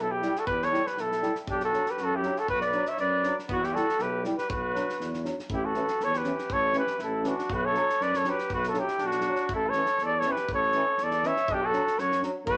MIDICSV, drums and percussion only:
0, 0, Header, 1, 2, 480
1, 0, Start_track
1, 0, Key_signature, 2, "minor"
1, 0, Tempo, 503356
1, 445, Time_signature, 2, 2, 24, 8
1, 6204, Tempo, 495868
1, 12075, End_track
2, 0, Start_track
2, 0, Title_t, "Drums"
2, 214, Note_on_c, 9, 38, 26
2, 309, Note_off_c, 9, 38, 0
2, 341, Note_on_c, 9, 38, 22
2, 436, Note_off_c, 9, 38, 0
2, 449, Note_on_c, 9, 36, 81
2, 545, Note_off_c, 9, 36, 0
2, 593, Note_on_c, 9, 38, 22
2, 689, Note_off_c, 9, 38, 0
2, 708, Note_on_c, 9, 38, 21
2, 803, Note_off_c, 9, 38, 0
2, 827, Note_on_c, 9, 38, 25
2, 923, Note_off_c, 9, 38, 0
2, 929, Note_on_c, 9, 38, 23
2, 1025, Note_off_c, 9, 38, 0
2, 1066, Note_on_c, 9, 38, 25
2, 1162, Note_off_c, 9, 38, 0
2, 1172, Note_on_c, 9, 38, 24
2, 1268, Note_off_c, 9, 38, 0
2, 1289, Note_on_c, 9, 38, 22
2, 1385, Note_off_c, 9, 38, 0
2, 1407, Note_on_c, 9, 36, 81
2, 1502, Note_off_c, 9, 36, 0
2, 1527, Note_on_c, 9, 38, 19
2, 1623, Note_off_c, 9, 38, 0
2, 1654, Note_on_c, 9, 38, 20
2, 1749, Note_off_c, 9, 38, 0
2, 1774, Note_on_c, 9, 38, 22
2, 1869, Note_off_c, 9, 38, 0
2, 1883, Note_on_c, 9, 38, 21
2, 1978, Note_off_c, 9, 38, 0
2, 2125, Note_on_c, 9, 38, 21
2, 2221, Note_off_c, 9, 38, 0
2, 2255, Note_on_c, 9, 38, 19
2, 2350, Note_off_c, 9, 38, 0
2, 2369, Note_on_c, 9, 36, 71
2, 2464, Note_off_c, 9, 36, 0
2, 2490, Note_on_c, 9, 38, 20
2, 2585, Note_off_c, 9, 38, 0
2, 2596, Note_on_c, 9, 38, 16
2, 2691, Note_off_c, 9, 38, 0
2, 2726, Note_on_c, 9, 38, 24
2, 2821, Note_off_c, 9, 38, 0
2, 2836, Note_on_c, 9, 38, 19
2, 2932, Note_off_c, 9, 38, 0
2, 3085, Note_on_c, 9, 38, 27
2, 3180, Note_off_c, 9, 38, 0
2, 3231, Note_on_c, 9, 38, 21
2, 3327, Note_off_c, 9, 38, 0
2, 3329, Note_on_c, 9, 36, 87
2, 3425, Note_off_c, 9, 36, 0
2, 3468, Note_on_c, 9, 38, 21
2, 3563, Note_off_c, 9, 38, 0
2, 3585, Note_on_c, 9, 38, 23
2, 3680, Note_off_c, 9, 38, 0
2, 3711, Note_on_c, 9, 38, 24
2, 3803, Note_off_c, 9, 38, 0
2, 3803, Note_on_c, 9, 38, 23
2, 3899, Note_off_c, 9, 38, 0
2, 4046, Note_on_c, 9, 38, 30
2, 4142, Note_off_c, 9, 38, 0
2, 4180, Note_on_c, 9, 38, 26
2, 4275, Note_off_c, 9, 38, 0
2, 4290, Note_on_c, 9, 36, 109
2, 4385, Note_off_c, 9, 36, 0
2, 4534, Note_on_c, 9, 38, 27
2, 4630, Note_off_c, 9, 38, 0
2, 4666, Note_on_c, 9, 38, 29
2, 4761, Note_off_c, 9, 38, 0
2, 4775, Note_on_c, 9, 38, 28
2, 4870, Note_off_c, 9, 38, 0
2, 4899, Note_on_c, 9, 38, 25
2, 4994, Note_off_c, 9, 38, 0
2, 5008, Note_on_c, 9, 38, 30
2, 5103, Note_off_c, 9, 38, 0
2, 5142, Note_on_c, 9, 38, 24
2, 5237, Note_off_c, 9, 38, 0
2, 5241, Note_on_c, 9, 36, 90
2, 5337, Note_off_c, 9, 36, 0
2, 5475, Note_on_c, 9, 38, 20
2, 5570, Note_off_c, 9, 38, 0
2, 5605, Note_on_c, 9, 38, 25
2, 5700, Note_off_c, 9, 38, 0
2, 5724, Note_on_c, 9, 38, 26
2, 5819, Note_off_c, 9, 38, 0
2, 5852, Note_on_c, 9, 38, 25
2, 5947, Note_off_c, 9, 38, 0
2, 5951, Note_on_c, 9, 38, 26
2, 6046, Note_off_c, 9, 38, 0
2, 6089, Note_on_c, 9, 38, 24
2, 6184, Note_off_c, 9, 38, 0
2, 6196, Note_on_c, 9, 36, 83
2, 6293, Note_off_c, 9, 36, 0
2, 6423, Note_on_c, 9, 38, 23
2, 6520, Note_off_c, 9, 38, 0
2, 6558, Note_on_c, 9, 38, 26
2, 6655, Note_off_c, 9, 38, 0
2, 6672, Note_on_c, 9, 38, 24
2, 6769, Note_off_c, 9, 38, 0
2, 6916, Note_on_c, 9, 38, 27
2, 7012, Note_off_c, 9, 38, 0
2, 7058, Note_on_c, 9, 38, 24
2, 7154, Note_off_c, 9, 38, 0
2, 7162, Note_on_c, 9, 36, 88
2, 7259, Note_off_c, 9, 36, 0
2, 7404, Note_on_c, 9, 38, 22
2, 7500, Note_off_c, 9, 38, 0
2, 7549, Note_on_c, 9, 38, 26
2, 7646, Note_off_c, 9, 38, 0
2, 7659, Note_on_c, 9, 38, 23
2, 7756, Note_off_c, 9, 38, 0
2, 7783, Note_on_c, 9, 38, 28
2, 7880, Note_off_c, 9, 38, 0
2, 7885, Note_on_c, 9, 38, 28
2, 7982, Note_off_c, 9, 38, 0
2, 8024, Note_on_c, 9, 38, 25
2, 8121, Note_off_c, 9, 38, 0
2, 8135, Note_on_c, 9, 36, 87
2, 8232, Note_off_c, 9, 36, 0
2, 8266, Note_on_c, 9, 38, 22
2, 8363, Note_off_c, 9, 38, 0
2, 8366, Note_on_c, 9, 38, 21
2, 8463, Note_off_c, 9, 38, 0
2, 8501, Note_on_c, 9, 38, 26
2, 8598, Note_off_c, 9, 38, 0
2, 8602, Note_on_c, 9, 38, 24
2, 8699, Note_off_c, 9, 38, 0
2, 8726, Note_on_c, 9, 38, 24
2, 8818, Note_off_c, 9, 38, 0
2, 8818, Note_on_c, 9, 38, 28
2, 8915, Note_off_c, 9, 38, 0
2, 8963, Note_on_c, 9, 38, 24
2, 9060, Note_off_c, 9, 38, 0
2, 9093, Note_on_c, 9, 36, 87
2, 9190, Note_off_c, 9, 36, 0
2, 9322, Note_on_c, 9, 38, 22
2, 9419, Note_off_c, 9, 38, 0
2, 9449, Note_on_c, 9, 38, 27
2, 9546, Note_off_c, 9, 38, 0
2, 9571, Note_on_c, 9, 38, 23
2, 9667, Note_off_c, 9, 38, 0
2, 9795, Note_on_c, 9, 38, 28
2, 9891, Note_off_c, 9, 38, 0
2, 9937, Note_on_c, 9, 38, 27
2, 10034, Note_off_c, 9, 38, 0
2, 10056, Note_on_c, 9, 36, 88
2, 10153, Note_off_c, 9, 36, 0
2, 10284, Note_on_c, 9, 38, 20
2, 10381, Note_off_c, 9, 38, 0
2, 10533, Note_on_c, 9, 38, 25
2, 10630, Note_off_c, 9, 38, 0
2, 10660, Note_on_c, 9, 38, 24
2, 10757, Note_off_c, 9, 38, 0
2, 10780, Note_on_c, 9, 38, 23
2, 10877, Note_off_c, 9, 38, 0
2, 10909, Note_on_c, 9, 38, 21
2, 11006, Note_off_c, 9, 38, 0
2, 11021, Note_on_c, 9, 36, 86
2, 11118, Note_off_c, 9, 36, 0
2, 11260, Note_on_c, 9, 38, 21
2, 11357, Note_off_c, 9, 38, 0
2, 11399, Note_on_c, 9, 38, 23
2, 11496, Note_off_c, 9, 38, 0
2, 11507, Note_on_c, 9, 38, 26
2, 11604, Note_off_c, 9, 38, 0
2, 11635, Note_on_c, 9, 38, 27
2, 11731, Note_off_c, 9, 38, 0
2, 11744, Note_on_c, 9, 38, 26
2, 11841, Note_off_c, 9, 38, 0
2, 11977, Note_on_c, 9, 36, 84
2, 12074, Note_off_c, 9, 36, 0
2, 12075, End_track
0, 0, End_of_file